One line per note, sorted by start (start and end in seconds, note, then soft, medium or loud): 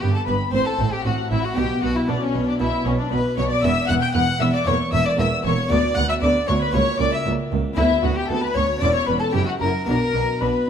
0.00 0.10 G1 medium
0.00 0.25 G2 medium
0.00 0.10 G2 medium
0.00 0.49 B3 medium
0.00 0.10 B3 medium
0.00 0.49 D4 medium
0.00 0.13 G4 medium
0.00 0.14 G4 medium
0.00 0.14 G5 loud
0.14 0.27 A4 medium
0.14 0.21 A4 medium
0.14 0.27 A5 loud
0.26 0.35 G1 medium
0.26 0.50 G2 medium
0.26 0.36 G2 medium
0.26 0.36 B3 medium
0.26 0.34 B4 medium
0.26 0.36 B4 medium
0.26 0.52 B5 loud
0.50 0.61 A1 medium
0.50 0.61 A2 medium
0.50 0.77 A2 medium
0.50 1.52 C4 medium
0.50 0.61 C4 medium
0.50 0.65 C5 loud
0.50 0.66 C6 loud
0.55 0.68 C5 medium
0.65 0.91 A4 medium
0.65 0.95 A4 medium
0.65 0.92 A5 loud
0.79 0.87 A1 medium
0.79 1.02 A2 medium
0.79 0.88 A2 medium
0.79 0.88 C4 medium
0.91 1.04 G4 medium
0.91 1.05 G4 medium
0.91 1.05 G5 loud
1.04 1.13 A1 medium
1.04 1.13 A2 medium
1.04 1.28 A2 medium
1.04 1.14 C4 medium
1.04 1.30 F#4 medium
1.04 1.14 F#4 medium
1.04 1.31 F#5 loud
1.29 1.38 A1 medium
1.29 1.54 A2 medium
1.29 1.39 A2 medium
1.29 1.39 C4 medium
1.29 1.43 E4 medium
1.29 1.46 E4 medium
1.29 1.44 E5 medium
1.42 1.56 F#4 medium
1.42 1.59 F#4 medium
1.42 1.57 F#5 medium
1.53 1.64 B1 medium
1.53 1.80 B2 medium
1.53 1.65 B2 medium
1.53 3.58 B3 medium
1.53 3.59 D4 medium
1.53 1.81 G4 medium
1.53 1.82 G5 loud
1.58 1.66 B3 medium
1.58 1.83 G4 medium
1.81 1.90 B1 medium
1.81 2.06 B2 medium
1.81 1.91 B2 medium
1.81 1.90 B3 medium
1.81 1.95 F#4 medium
1.81 1.98 F#4 medium
1.81 1.87 F#5 medium
1.94 2.08 E4 medium
1.94 2.11 E4 medium
1.94 2.01 E5 medium
2.08 2.16 B1 medium
2.08 2.16 B2 medium
2.08 2.32 B2 medium
2.08 2.16 B3 medium
2.08 2.21 D4 medium
2.08 2.22 D4 medium
2.08 2.21 D5 loud
2.20 2.46 C#4 medium
2.20 2.47 C#5 loud
2.34 2.42 B1 medium
2.34 2.57 B2 medium
2.34 2.43 B2 medium
2.34 2.42 B3 medium
2.46 2.60 D4 medium
2.46 2.60 D5 medium
2.59 2.68 B1 medium
2.59 2.83 B2 medium
2.59 2.68 B2 medium
2.59 2.67 B3 medium
2.59 2.85 E4 medium
2.59 2.68 E4 medium
2.59 2.85 E5 loud
2.85 2.93 B1 medium
2.85 3.09 B2 medium
2.85 2.94 B2 medium
2.85 2.93 B3 medium
2.85 2.99 C#4 medium
2.85 2.92 C#4 medium
2.85 2.99 C#5 loud
2.98 3.11 D4 medium
2.98 3.12 D4 medium
2.98 3.12 D5 medium
3.11 3.20 B1 medium
3.11 3.35 B2 medium
3.11 3.20 B2 medium
3.11 3.19 B3 medium
3.11 3.38 B4 medium
3.11 3.38 B4 loud
3.11 3.19 B5 loud
3.37 3.45 B1 medium
3.37 3.61 B2 medium
3.37 3.46 B2 medium
3.37 3.46 B3 medium
3.37 3.50 C#5 loud
3.37 3.44 C#5 loud
3.37 3.50 C#6 loud
3.49 3.62 D5 medium
3.49 3.66 D5 loud
3.49 3.63 D6 loud
3.60 3.72 E1 medium
3.60 3.86 E2 medium
3.60 4.62 B3 medium
3.60 3.71 B3 medium
3.60 4.62 E4 medium
3.60 3.88 E5 loud
3.60 3.89 E6 loud
3.64 3.72 E2 medium
3.64 3.88 E5 loud
3.88 3.98 E1 medium
3.88 4.12 E2 medium
3.88 3.98 E2 medium
3.88 3.98 B3 medium
3.88 4.02 F#5 loud
3.88 3.94 F#5 loud
3.88 3.93 F#6 loud
4.02 4.15 G5 loud
4.02 4.14 G5 loud
4.02 4.07 G6 loud
4.13 4.23 E1 medium
4.13 4.37 E2 medium
4.13 4.22 E2 medium
4.13 4.22 B3 medium
4.13 4.40 F#5 loud
4.13 4.42 F#5 loud
4.13 4.22 F#6 loud
4.40 4.49 E1 medium
4.40 4.64 E2 medium
4.40 4.49 E2 medium
4.40 4.48 B3 medium
4.40 4.53 E5 loud
4.40 4.54 E5 loud
4.40 4.45 E6 loud
4.53 4.66 D5 medium
4.53 4.59 D5 medium
4.53 4.66 D6 loud
4.63 4.75 E1 medium
4.63 4.90 E2 medium
4.63 4.74 E2 medium
4.63 5.65 A#3 medium
4.63 4.75 A#3 medium
4.63 5.66 F#4 medium
4.63 4.74 C#5 loud
4.63 4.75 C#5 loud
4.63 4.92 C#6 loud
4.91 5.01 E1 medium
4.91 5.15 E2 medium
4.91 5.00 E2 medium
4.91 5.01 A#3 medium
4.91 5.05 E5 loud
4.91 5.07 E5 loud
4.91 5.05 E6 loud
5.05 5.18 D5 loud
5.05 5.18 D5 medium
5.05 5.11 D6 loud
5.17 5.27 E1 medium
5.17 5.41 E2 medium
5.17 5.26 E2 medium
5.17 5.26 A#3 medium
5.17 5.26 E5 loud
5.17 5.28 E5 loud
5.17 5.44 E6 loud
5.43 5.52 E1 medium
5.43 5.68 E2 medium
5.43 5.52 E2 medium
5.43 5.53 A#3 medium
5.43 5.72 C#5 loud
5.43 5.70 C#5 loud
5.43 5.70 C#6 loud
5.67 5.93 D2 medium
5.67 5.78 D2 medium
5.67 5.78 D2 loud
5.67 6.69 B3 medium
5.67 5.78 B3 medium
5.67 6.70 F#4 medium
5.67 5.96 D5 loud
5.67 5.78 D6 loud
5.72 5.96 D5 loud
5.94 6.19 D2 medium
5.94 6.04 D2 medium
5.94 6.05 D2 medium
5.94 6.05 B3 medium
5.94 6.08 F#5 loud
5.94 6.03 F#5 loud
5.94 6.08 F#6 loud
6.09 6.14 E5 medium
6.09 6.15 E5 loud
6.09 6.15 E6 loud
6.22 6.30 D2 medium
6.22 6.46 D2 medium
6.22 6.31 B3 medium
6.22 6.47 D5 loud
6.22 6.48 D5 loud
6.22 6.31 D6 loud
6.47 6.56 D2 medium
6.47 6.72 D2 medium
6.47 6.56 B3 medium
6.47 6.53 C#5 loud
6.47 6.61 C#5 loud
6.47 6.53 C#6 loud
6.60 6.75 B4 loud
6.60 6.74 B4 loud
6.60 6.74 B5 loud
6.70 6.97 C#2 medium
6.70 6.82 C#2 medium
6.70 7.73 A#3 medium
6.70 6.82 A#3 medium
6.70 7.74 F#4 medium
6.70 7.02 C#5 loud
6.75 7.00 C#5 loud
6.75 7.00 C#6 loud
6.99 7.08 C#2 medium
6.99 7.23 C#2 medium
6.99 7.08 C#2 medium
6.99 7.07 A#3 medium
6.99 7.13 D5 loud
6.99 7.12 D5 medium
6.99 7.13 D6 loud
7.13 7.25 E5 medium
7.13 7.26 E5 medium
7.13 7.26 E6 loud
7.25 7.33 C#2 medium
7.25 7.34 C#2 medium
7.25 7.50 C#2 medium
7.25 7.34 A#3 medium
7.51 7.59 C#2 medium
7.51 7.60 C#2 medium
7.51 7.75 C#2 medium
7.51 7.60 A#3 medium
7.74 8.01 D2 medium
7.74 7.85 D2 loud
7.74 8.77 B3 medium
7.74 7.85 E4 loud
7.74 8.01 E4 loud
7.74 8.78 F#4 medium
7.74 8.01 E5 loud
7.78 7.86 D2 medium
7.78 7.87 B3 medium
8.03 8.27 D2 medium
8.03 8.11 D2 medium
8.03 8.12 D2 medium
8.03 8.12 B3 medium
8.03 8.18 F#4 medium
8.03 8.17 F#4 medium
8.03 8.17 F#5 loud
8.16 8.29 G4 medium
8.16 8.28 G4 medium
8.16 8.30 G5 loud
8.28 8.53 D2 medium
8.28 8.38 D2 medium
8.28 8.38 B3 medium
8.28 8.43 A4 loud
8.28 8.42 A4 medium
8.28 8.43 A5 loud
8.42 8.56 B4 medium
8.42 8.57 B5 loud
8.55 8.63 D2 medium
8.55 8.79 D2 medium
8.55 8.64 D2 medium
8.55 8.64 B3 medium
8.55 8.82 C#5 loud
8.55 8.64 C#6 loud
8.79 8.90 E1 medium
8.79 9.05 E2 medium
8.79 8.90 E2 medium
8.79 9.28 C#4 medium
8.79 8.90 C#4 medium
8.79 9.30 E4 medium
8.79 8.94 D5 loud
8.79 8.95 D5 loud
8.83 8.88 D6 loud
8.93 9.06 C#5 medium
8.93 9.08 C#5 medium
8.93 9.09 C#6 loud
9.06 9.16 E1 medium
9.06 9.32 E2 medium
9.06 9.17 E2 medium
9.06 9.17 C#4 medium
9.06 9.12 B4 medium
9.06 9.14 B4 medium
9.06 9.21 B5 loud
9.19 9.25 A4 medium
9.19 9.34 A4 medium
9.19 9.34 A5 loud
9.29 9.83 C#4 medium
9.29 9.84 E4 medium
9.29 9.45 G4 medium
9.34 9.43 F#1 medium
9.34 9.58 F#2 medium
9.34 9.42 F#2 medium
9.34 9.43 E4 medium
9.34 9.47 G4 medium
9.34 9.47 G5 loud
9.45 9.51 F#4 medium
9.45 9.54 F#4 medium
9.45 9.53 F#5 medium
9.60 9.69 F#1 medium
9.60 9.85 F#2 medium
9.60 9.70 F#2 medium
9.60 9.71 E4 medium
9.60 9.86 A#4 medium
9.60 9.87 A#4 medium
9.60 9.68 A#5 loud
9.85 9.95 B1 medium
9.85 9.95 B2 medium
9.85 10.12 B2 medium
9.85 10.70 D4 medium
9.85 9.97 D4 medium
9.85 10.70 F#4 medium
9.85 10.42 A#4 loud
9.85 10.40 A#4 loud
9.85 10.40 A#5 loud
10.14 10.22 B1 medium
10.14 10.22 B2 medium
10.14 10.39 B2 medium
10.14 10.23 D4 medium
10.40 10.49 B1 medium
10.40 10.49 B2 medium
10.40 10.66 B2 medium
10.40 10.48 D4 medium
10.40 10.70 B4 medium
10.40 10.70 B5 medium
10.66 10.70 D4 medium